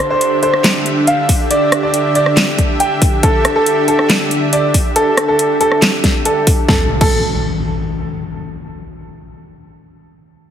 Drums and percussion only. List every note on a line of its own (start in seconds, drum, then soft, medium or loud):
0.21 closed hi-hat medium
0.43 closed hi-hat soft
0.54 cross-stick medium
0.64 snare loud
0.64 clap medium
0.64 closed hi-hat medium
0.86 closed hi-hat soft
1.07 closed hi-hat medium
1.29 kick medium
1.29 open hi-hat medium
1.51 closed hi-hat medium
1.72 cross-stick medium
1.72 closed hi-hat medium
1.94 closed hi-hat medium
2.15 closed hi-hat soft
2.26 cross-stick medium
2.37 snare loud
2.37 clap medium
2.37 closed hi-hat medium
2.58 kick medium
2.58 closed hi-hat medium
2.80 closed hi-hat medium
3.02 kick loud
3.02 open hi-hat medium
3.23 kick loud
3.23 closed hi-hat medium
3.45 cross-stick medium
3.45 closed hi-hat medium
3.66 closed hi-hat medium
3.88 closed hi-hat medium
3.99 cross-stick soft
4.10 snare loud
4.10 clap medium
4.10 closed hi-hat medium
4.31 closed hi-hat medium
4.53 closed hi-hat medium
4.74 kick medium
4.74 open hi-hat loud
4.96 closed hi-hat medium
5.17 cross-stick medium
5.17 closed hi-hat medium
5.39 closed hi-hat medium
5.61 closed hi-hat medium
5.72 cross-stick soft
5.82 snare loud
5.82 clap medium
5.82 closed hi-hat medium
6.04 kick medium
6.04 snare medium
6.04 closed hi-hat medium
6.25 closed hi-hat medium
6.47 kick loud
6.47 open hi-hat medium
6.69 kick loud
6.69 snare medium
7.01 kick loud
7.01 crash medium